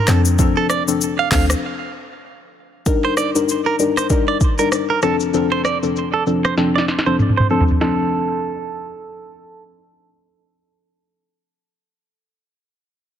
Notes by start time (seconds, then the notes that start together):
0.07 F2 F3 C4 D4 A4, cross-stick, clap, shaker
0.25 shaker
0.39 F3 C4 D4 A4, kick, shaker
0.57 A4
0.70 D5, cross-stick, shaker
0.88 F3 C4 D4 A4, shaker
1.01 shaker
1.19 F5
1.31 D2 F3 C4 D4 A4 F5, kick, clap, open hi-hat, shaker
1.50 cross-stick, shaker
2.86 G3 D4 D#4 A#4, kick, shaker
3.05 C5
3.17 D5, cross-stick, shaker
3.35 G3 D4 D#4 A#4, shaker
3.49 shaker
3.66 A#4
3.79 G3 D4 D#4 A#4, shaker
3.97 C5, cross-stick, shaker
4.10 G3 D4 D#4 A#4, kick, shaker
4.28 D5
4.41 kick, shaker
4.59 G3 D4 D#4 A#4, shaker
4.72 cross-stick, shaker
4.90 A#4
5.02 F3 C4 D4 A4, cross-stick, shaker
5.20 shaker
5.34 F3 C4 D4 A4, shaker
5.52 C5
5.65 D5, cross-stick, shaker
5.83 F3 C4 D4 A4, shaker
5.96 shaker
6.13 A4
6.27 F3 C4 D4 A4, shaker
6.45 C5, cross-stick, shaker
6.57 F3 C4 D4 A4, snare, shaker
6.76 D5, snare
6.88 snare, shaker
6.99 snare
7.06 F3 C4 D4 A4 C5, shaker
7.19 mid tom, shaker
7.30 mid tom
7.38 C5, mid tom
7.50 F3 C4 D4 A4, shaker
7.61 floor tom
7.68 floor tom, shaker
7.81 F3 C4 D4 A4, snare